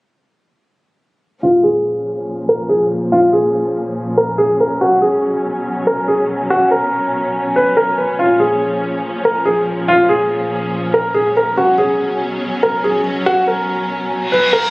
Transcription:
1.43 A#2 F3 C#4 F4
1.64 G#4
2.49 A#4
2.69 G#4
3.12 F4
3.33 G#4
4.17 A#4
4.38 G#4
4.60 A#4
4.81 B2 F#3 F#4
5.02 G#4
5.87 A#4
6.08 G#4
6.50 F#4
6.71 A#4
7.56 B4
7.77 A#4
7.98 B4
8.19 A#2 F3 F4
8.40 G#4
9.25 A#4
9.45 G#4
9.88 F4
10.09 G#4
10.94 A#4
11.14 G#4
11.37 A#4
11.57 B2 F#3 C#4 F#4
11.78 G#4
12.63 A#4
12.84 G#4
13.26 F#4
13.47 A#4
14.11 reverse cymbal
14.32 B4
14.53 A#4

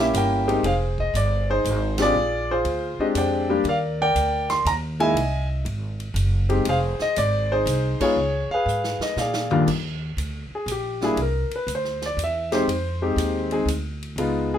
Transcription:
Already playing: A#1
0.00 A#3 C#4 E4 G4 E5
0.13 G1 A#4 E5, hi-hat pedal, ride
0.18 G5
0.48 G#3 C4 D#4 G4, ride
0.63 F1 G#4 C5 F5, ride
0.98 D#5, kick
1.14 G1 D5, hi-hat pedal, ride
1.50 D#4 G#4 C5
1.64 G#1, hi-hat pedal, ride
1.98 G#3 C4 D4 G4, snare, ride
2.02 F4 G#4 D5
2.14 A#1
2.51 F4 G#4 C5
2.65 D2, ride
2.99 G#3 C4 D4 G4 D#5, muted upright bass stroke
3.15 F2 C5 D5 G5, hi-hat pedal, ride
3.50 G3 A#3 D4 G4
3.64 D#2, ride
3.68 A#4 D5 F5
4.01 A#4 D5 G5
4.15 D2, hi-hat pedal, ride
4.49 C6, snare, ride
4.65 D#2 A#5, hi-hat pedal, ride
5.00 G#3 A#3 D#4 E4 D#5 E5 G#5, ride
5.14 C2, ride
5.65 G#1, ride
6.00 ride
6.14 F#1, hi-hat pedal, ride
6.49 G#3 C4 D#4 G4, ride
6.65 F1 G#4 F5, ride
6.70 C5
6.99 D#5, muted upright bass stroke, snare
7.16 G#1 D5, hi-hat pedal, ride
7.52 D#4 G#4 C5
7.66 C2, hi-hat pedal, ride
8.00 G#3 B3 D#4 F4 G#4 C#5, kick, crash
8.16 C#2
8.49 F5, muted upright bass stroke
8.54 G#4 B4
8.66 G#2, hi-hat pedal
8.84 snare
8.99 D#5, muted upright bass stroke, snare
9.16 A#2 D5 F5, snare, hi-hat pedal
9.21 G#4
9.33 snare
9.51 D#2 G3 A#3 D4 F4, floor tom
9.67 D#2, kick, crash
10.17 D2, hi-hat pedal, ride
10.51 muted upright bass stroke
10.55 G#4
10.66 A#1, hi-hat pedal, ride
10.72 G4
11.01 G3 A#3 D4 E4 G#4, snare
11.16 C2, ride
11.22 A#4
11.50 muted upright bass stroke, ride
11.56 B4
11.67 D2, hi-hat pedal, ride
11.75 C5
11.85 snare
12.02 D5, snare, ride
12.17 E2, hi-hat pedal, ride
12.24 E5
12.52 G#3 C4 D#4 G4 C5, snare, ride
12.67 F2, ride
13.02 G#3 C4 D#4 G4
13.16 D#2, hi-hat pedal, ride
13.51 G#3 C4 D#4 G#4, ride
13.65 D2, hi-hat pedal, ride
14.03 ride
14.16 C#2 G#3 B3 D#4 F4, ride
14.54 G#4

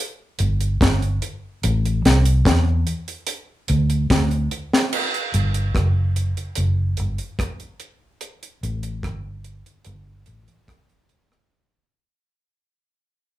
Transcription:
0.39 G1, closed hi-hat
0.61 closed hi-hat
0.81 G1, kick, snare, closed hi-hat
1.02 closed hi-hat
1.22 closed hi-hat
1.63 A1, closed hi-hat
1.86 closed hi-hat
2.05 C2, snare, closed hi-hat
2.25 closed hi-hat
2.45 E2, kick, snare, closed hi-hat
2.87 closed hi-hat
3.08 closed hi-hat
3.27 closed hi-hat
3.68 D2, closed hi-hat
3.90 closed hi-hat
4.10 D2, kick, snare, closed hi-hat
4.31 closed hi-hat
4.51 closed hi-hat
4.73 snare
4.93 crash
5.14 closed hi-hat
5.34 G1, closed hi-hat
5.54 closed hi-hat
5.75 F#1, kick, cross-stick, closed hi-hat
6.16 closed hi-hat
6.37 closed hi-hat
6.55 F#1, closed hi-hat
6.97 G1, closed hi-hat
7.18 closed hi-hat
7.39 kick, cross-stick, closed hi-hat
7.60 closed hi-hat
7.80 closed hi-hat
8.21 closed hi-hat
8.43 closed hi-hat
8.63 A1, closed hi-hat
8.83 closed hi-hat
9.03 G1, kick, cross-stick, closed hi-hat
9.44 closed hi-hat
9.66 closed hi-hat
9.85 G1, closed hi-hat
10.26 A1, closed hi-hat
10.48 closed hi-hat
10.68 kick, cross-stick, closed hi-hat
10.89 closed hi-hat
11.09 closed hi-hat
11.32 cross-stick

